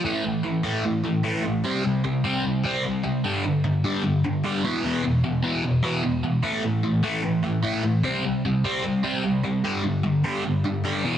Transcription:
\new Staff \with { instrumentName = "Overdriven electric guitar" } { \clef bass \time 4/4 \key a \minor \tempo 4 = 150 <a, e a>8 <a, e>8 <a, e>8 <a, e a>8 <a, e>8 <a, e>8 <a, e a>8 <a, e>8 | <c g c'>8 <c g>8 <c g>8 <c g c'>8 <c g>8 <c g c'>8 <c g>8 <c g>8 | <g, d g>8 <g, d>8 <g, d>8 <g, d g>8 <g, d>8 <g, d>8 <g, d g>8 <e, b, e>8 | <e, b, e>8 <e, b,>8 <e, b,>8 <e, b, e>8 <e, b,>8 <e, b, e>8 <e, b,>8 <e, b,>8 |
<a, e a>8 <a, e>8 <a, e>8 <a, e a>8 <a, e>8 <a, e>8 <a, e a>8 <a, e>8 | <c g c'>8 <c g>8 <c g>8 <c g c'>8 <c g>8 <c g c'>8 <c g>8 <c g>8 | <g, d g>8 <g, d>8 <g, d>8 <g, d g>8 <g, d>8 <g, d>8 <g, d g>8 <e, b, e>8 | }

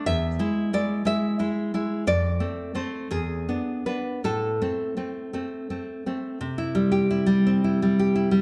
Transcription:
\new Staff \with { instrumentName = "Nylon-string guitar" } { \time 6/8 \key a \minor \tempo 4. = 57 << { e''4 d''8 e''8 r4 | d''4 c''8 gis'4 b'8 | a'2~ a'8 r8 | \key c \major r2. | } \\ { e,8 <gis e'>8 <gis e'>8 <gis e'>8 <gis e'>8 <gis e'>8 | f,8 <a c'>8 <a c'>8 e,8 <b d'>8 <b d'>8 | a,8 <a c'>8 <a c'>8 <a c'>8 <a c'>8 <a c'>8 | c16 e'16 g16 g'16 e'16 g16 c'16 e'16 g16 g'16 e'16 g16 | } >> }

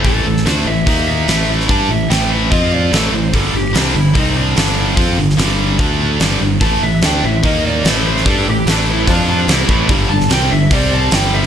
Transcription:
<<
  \new Staff \with { instrumentName = "Lead electric guitar" } { \time 4/4 \key a \minor \tempo 4 = 146 a'4 c''8 e''4 e''4 r8 | a''8 e''8 g''8 e''8 dis''8 d''8 a'8 c''8 | a'8 g'8 d'8 e'8 dis'8 d'8 d'4 | r1 |
a''8 e''8 g''8 e''8 dis''8 d''8 a'8 c''8 | a'8 g'8 d'8 e'8 d'8 d'8 e'4 | r8 a''8 g''8 e''8 d''8 a''8 g''8 e''8 | }
  \new Staff \with { instrumentName = "Tonewheel organ" } { \time 4/4 \key a \minor r1 | r1 | r1 | r1 |
<a e' b'>2 <dis' ais' f''>4 <a e' b'>4~ | <a e' b'>2 <f c' g'>4 <a e' b'>4 | <g d' a'>2 <c' g' d''>4 <g d' a'>4 | }
  \new Staff \with { instrumentName = "Distorted electric guitar" } { \clef bass \time 4/4 \key a \minor <a, e a>8 <a, e>8 <d a d'>8 <a, e>8 <dis ais dis'>4 <a, e a>4 | <g d' g'>8 <a, e>8 <a, e a>4 <f c' f'>4 <a, e a>8 <a, e>8 | <g, d g>8 <g, d>8 <c g c'>8 <g, d>8 <c g c'>4 <g, d g>4 | <f c' f'>8 <g, d>8 <g, d g>4 <d a d'>4 <g, d g>8 <g, d>8 |
<a, e a>8 <a, e>8 <d a d'>8 <a, e>8 <dis ais dis'>4 <a, e a>4 | <g d' g'>8 <a, e>8 <a, e a>4 <f c' f'>4 <c g c'>8 <a, e a>8 | <g, d g>8 <g, d>8 <c g c'>8 <g, d>8 <c g c'>4 <g, d g>4 | }
  \new Staff \with { instrumentName = "Distorted electric guitar" } { \clef bass \time 4/4 \key a \minor <a, e a>8 <a, e>8 <d a d'>8 <a, e>8 <dis ais dis'>4 <a, e a>4 | <g d' g'>8 <a, e>8 <a, e a>4 <f c' f'>4 <a, e a>8 <a, e>8 | <g, d g>8 <g, d>8 <c g c'>8 <g, d>8 <c g c'>4 <g, d g>4 | <f c' f'>8 <g, d>8 <g, d g>4 <d a d'>4 <g, d g>8 <g, d>8 |
<a, e a>8 <a, e>8 <d a d'>8 <a, e>8 <dis ais dis'>4 <a, e a>4 | <g d' g'>8 <a, e>8 <a, e a>4 <f c' f'>4 <c g c'>8 <a, e a>8 | <g, d g>8 <g, d>8 <c g c'>8 <g, d>8 <c g c'>4 <g, d g>4 | }
  \new Staff \with { instrumentName = "Fingered electric bass" } { \clef bass \time 4/4 \key a \minor a,,8 a,,8 d,8 a,,8 dis,4 a,,4 | g,8 a,,8 a,,4 f,4 a,,8 a,,8 | g,,8 g,,8 c,8 g,,8 c,4 g,,4 | f,8 g,,8 g,,4 d,4 g,,8 g,,8 |
a,,8 a,,8 d,8 a,,8 dis,4 a,,4 | g,8 a,,8 a,,4 f,4 c,8 a,,8 | g,,8 g,,8 c,8 g,,8 c,4 g,,4 | }
  \new DrumStaff \with { instrumentName = "Drums" } \drummode { \time 4/4 <hho bd>8. sn16 <hho sn>4 <hho bd>4 <hho sn>8. sn16 | <hho bd>4 <hho sn>4 <hho bd>4 <hho sn>4 | <hho bd>4 <hho sn>4 <hho bd>4 <hho sn>4 | <hho bd>8. sn16 <hho sn>4 <hho bd>4 <hho sn>4 |
<hho bd>4 <hho sn>4 <hho bd>4 <hho sn>8. sn16 | <hho bd>4 <hho sn>4 <hho bd>4 <hho sn>8 bd8 | <hho bd>8. sn16 <hho sn>4 <hho bd>4 <hho sn>4 | }
>>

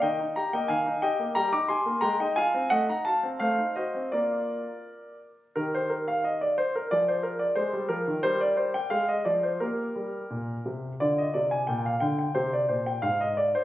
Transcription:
<<
  \new Staff \with { instrumentName = "Grand piano" } { \time 2/4 \key ees \major \tempo 4 = 88 << { <ees'' g''>8 <g'' bes''>16 <ees'' g''>16 <f'' aes''>8 <ees'' g''>8 | <g'' bes''>16 <bes'' d'''>16 <aes'' c'''>8 <g'' bes''>16 <ees'' g''>16 <f'' aes''>8 | <ees'' fis''>16 <fis'' bes''>16 <f'' a''>8 <c'' f''>8 <c'' ees''>8 | <bes' d''>4. r8 |
bes'16 c''16 bes'16 f''16 ees''16 d''16 c''16 bes'16 | d''16 c''16 bes'16 d''16 c''8 bes'8 | c''16 d''16 c''16 g''16 f''16 ees''16 d''16 c''16 | bes'4. r8 |
d''16 ees''16 d''16 aes''16 g''16 f''16 g''16 g''16 | c''16 d''16 c''16 g''16 f''16 ees''16 d''16 c''16 | } \\ { r2 | r2 | r2 | r2 |
g'2 | aes'2 | bes'4 r4 | g'4 r4 |
f'4 r4 | g'4 r4 | } >> }
  \new Staff \with { instrumentName = "Grand piano" } { \clef bass \time 2/4 \key ees \major ees16 ees'16 g'16 bes16 ees16 ees'16 g'16 bes16 | g16 ees'16 g'16 bes16 aes16 ees'16 f'16 c'16 | a16 ees'16 fis'16 c'16 a16 ees'16 fis'16 c'16 | <bes f'>4 r4 |
ees2 | f4 aes16 g16 f16 ees16 | g4 aes8 f8 | bes8 g8 bes,8 c8 |
d8 c8 bes,8 d8 | c8 bes,8 aes,4 | }
>>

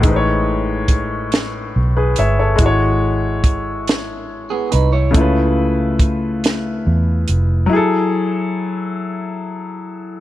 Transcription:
<<
  \new Staff \with { instrumentName = "Grand piano" } { \time 6/8 \key a \lydian \tempo 4. = 47 << { r2 r16 <gis' b'>16 <cis'' e''>16 <a' cis''>16~ | <a' cis''>16 r2 r8. | r2. | r2. | } \\ { <a, gis dis' b' c'' cis''>2. | <gis e' fis' cis''>2. | <cis a e' eis' b'>2. | <fis e' gis' a'>2. | } >> }
  \new Staff \with { instrumentName = "Clean electric guitar" } { \time 6/8 \key a \lydian r2. | r2 r16 <b gis'>16 <dis' b'>16 <e' cis''>16~ | <e' cis''>16 r2 r8. | r2. | }
  \new Staff \with { instrumentName = "Fingered electric bass" } { \clef bass \time 6/8 \key a \lydian a,,2 b,,8 g,,8 | gis,,2~ gis,,8 c,8 | cis,2 e,8 eis,,8 | r2. | }
  \new DrumStaff \with { instrumentName = "Drums" } \drummode { \time 6/8 <hh bd>4 <hh bd>8 <hh sn>4 hh8 | <hh bd>4 <hh bd>8 <hh sn>4 hh8 | <hh bd>4 <hh bd>8 <hh sn>4 hh8 | r4. r4. | }
>>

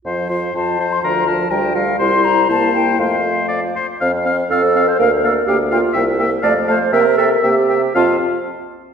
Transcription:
<<
  \new Staff \with { instrumentName = "Flute" } { \time 2/4 \key f \major \tempo 4 = 121 r4 a''8. c'''16 | bes''8 a''8 g''8 f''8 | c'''8 bes''8 a''8 g''8 | f''4. r8 |
f''8 f''8 f''8 f''8 | f''8 f''8 g''8 g''8 | g''8 g''8 a''8 a''8 | g''8 g''8 g''8 g''8 |
a''8 r4. | }
  \new Staff \with { instrumentName = "Oboe" } { \time 2/4 \key f \major c''8 c''8 c''8 c''8 | bes'8 bes'8 bes'8 bes'8 | c''4 c''4 | c''4 d''8 c''8 |
f''8 f''8 f''8 f''8 | f''8 f''8 f''8 f''8 | e''8 e''8 f''8 f''8 | e''8 e''8 e''8 e''8 |
f''8 r4. | }
  \new Staff \with { instrumentName = "Clarinet" } { \time 2/4 \key f \major f'8 f'8 f'8 f'8 | f'8 f'8 f'8 f'8 | e'4 e'4 | f'4. r8 |
r4 a'8. c''16 | bes'8 a'8 g'8 f'8 | r4 d''8 c''8 | bes'8 a'8 g'4 |
f'8 r4. | }
  \new Staff \with { instrumentName = "French horn" } { \time 2/4 \key f \major f8 f8 f8 f8 | f8 f8 g8 g8 | g4 bes4 | a4. r8 |
c'8 c'8 c'8 c'8 | bes8 bes8 bes8 bes8 | bes8 bes8 a8 a8 | bes8 bes8 bes8 bes8 |
c'8 r4. | }
  \new Staff \with { instrumentName = "Bassoon" } { \clef bass \time 2/4 \key f \major f,4 f,4 | d,4 d,4 | c,4 c,4 | f,4. r8 |
f,4 f,4 | d,4 d,4 | c,4 f,4 | c4 c4 |
f,8 r4. | }
>>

